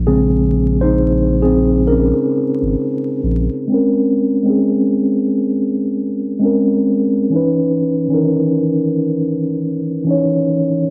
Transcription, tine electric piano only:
X:1
M:4/4
L:1/16
Q:"Swing 16ths" 1/4=66
K:Dbmix
V:1 name="Tine electric piano"
A3 [E=c]3 [=CA]2 [DB]6 z2 | [A,=CDB]2 z [A,CDA]4- [A,CDA] z4 [A,CDB]2 z2 | [_F,DEc]2 z [E,F,DEB]4- [E,F,DEB] z4 [F,DEd]2 z2 |]
V:2 name="Tine electric piano" clef=bass
[D,A,=C]6 z8 z2 | z16 | z16 |]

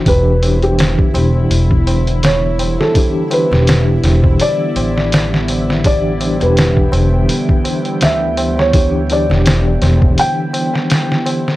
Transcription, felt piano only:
X:1
M:4/4
L:1/16
Q:"Swing 16ths" 1/4=83
K:Em
V:1 name="Felt piano"
B3 G3 z6 ^c3 A- | A2 B3 z3 d6- d z | d3 B3 z6 e3 ^c- | ^c2 d3 z3 g6- g z |]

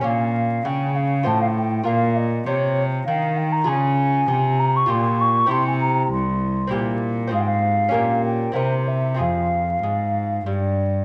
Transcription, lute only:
X:1
M:3/4
L:1/8
Q:1/4=99
K:Bbdor
V:1 name="Lute"
[Dd]4 [Fc]2 | [FB]6 | [K:Fm] [FA]4 [FG]2 | [C=EG]4 [CEG]2 |
[CFc]2 [DGB]2 [C=EB]2 | [CFA]6 |]
V:2 name="Lute" clef=bass
B,,2 D,2 =A,,2 | B,,2 C,2 E,2 | [K:Fm] D,2 C,2 B,,2 | C,2 z2 B,,2 |
A,,2 B,,2 C,2 | F,,2 A,,2 G,,2 |]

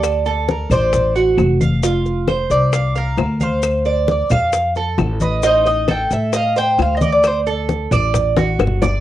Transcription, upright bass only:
X:1
M:4/4
L:1/8
Q:1/4=133
K:Dphr
V:1 name="Upright bass" clef=bass
D,,3 A,,,3 F,,,2- | F,,,3 C,,3 D,,2- | D,,3 F,,3 A,,,2- | A,,,3 A,,3 D,,2- |
D,,3 A,,,3 G,,,2 |]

